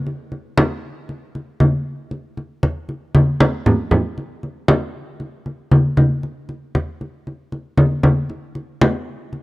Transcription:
0.07 high conga
0.32 high conga
0.58 high conga
1.09 high conga
1.35 high conga
1.60 high conga
2.11 high conga
2.37 high conga
2.63 high conga
2.89 high conga
3.15 high conga
3.40 high conga
3.66 low conga
3.91 low conga
4.18 high conga
4.43 high conga
4.68 high conga
5.20 high conga
5.46 high conga
5.71 high conga
5.97 high conga
6.23 high conga
6.49 high conga
6.75 high conga
7.01 high conga
7.27 high conga
7.52 high conga
7.77 high conga
8.03 high conga
8.30 high conga
8.55 high conga
8.81 high conga
9.33 high conga

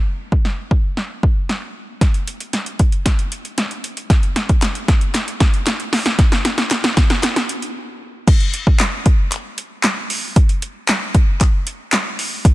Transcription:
0.32 kick
0.45 snare
0.71 kick
0.97 snare
1.23 kick
1.49 snare
2.01 kick, snare, closed hi-hat
2.14 closed hi-hat
2.28 closed hi-hat
2.40 closed hi-hat
2.53 snare, closed hi-hat
2.66 closed hi-hat
2.79 kick, closed hi-hat
2.92 closed hi-hat
3.06 kick, snare, closed hi-hat
3.19 closed hi-hat
3.32 closed hi-hat
3.45 closed hi-hat
3.58 snare, closed hi-hat
3.71 closed hi-hat
3.84 closed hi-hat
3.97 closed hi-hat
4.10 kick, snare, closed hi-hat
4.23 closed hi-hat
4.36 snare, closed hi-hat
4.49 kick, closed hi-hat
4.62 snare, clap, closed hi-hat
4.75 closed hi-hat
4.88 kick, snare, closed hi-hat
5.01 closed hi-hat
5.14 snare, clap, closed hi-hat
5.28 closed hi-hat
5.40 kick, snare, closed hi-hat
5.54 closed hi-hat
5.67 snare, clap, closed hi-hat
5.80 closed hi-hat
5.93 snare, open hi-hat
6.06 snare, closed hi-hat
6.19 kick, snare, closed hi-hat
6.32 snare, closed hi-hat
6.45 snare, closed hi-hat
6.58 snare, closed hi-hat
6.71 snare, clap, closed hi-hat
6.84 snare, closed hi-hat
6.97 kick, snare, closed hi-hat
7.10 snare, closed hi-hat
7.23 snare, clap, closed hi-hat
7.36 snare, closed hi-hat
7.49 closed hi-hat
7.62 closed hi-hat
8.28 kick, closed hi-hat, crash
8.40 closed hi-hat
8.54 closed hi-hat
8.67 kick
8.79 snare, clap, closed hi-hat
9.06 kick, closed hi-hat
9.32 clap, closed hi-hat
9.58 closed hi-hat
9.84 snare, clap, closed hi-hat
10.10 open hi-hat
10.36 kick, closed hi-hat
10.49 closed hi-hat
10.62 closed hi-hat
10.88 snare, clap, closed hi-hat
11.15 kick, closed hi-hat
11.41 kick, clap, closed hi-hat
11.67 closed hi-hat
11.93 snare, clap, closed hi-hat
12.19 open hi-hat
12.45 kick, closed hi-hat

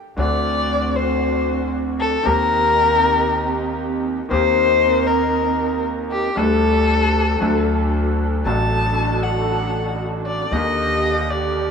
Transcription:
0.17 D2 D3 A3 C4 D4 F#4 D5
0.96 C5
2.00 A4
2.23 D#2 D#3 A#3 C4 D#4 G4 A#4
4.31 D#2 D#3 A#3 C4 D#4 G4 A#4 C5
5.06 A#4
6.11 G4
6.36 D2 D3 G3 A3 D4 G4 A4
7.40 D2 D3 F#3 A3 D4 F#4 A4
8.45 A1 A2 F#3 A3 D4 F#4 A4 A5
8.49 A4
9.23 F#5
10.26 D5
10.51 D#2 D3 D#3 A#3 G4 D#5
10.56 G4
11.30 D5

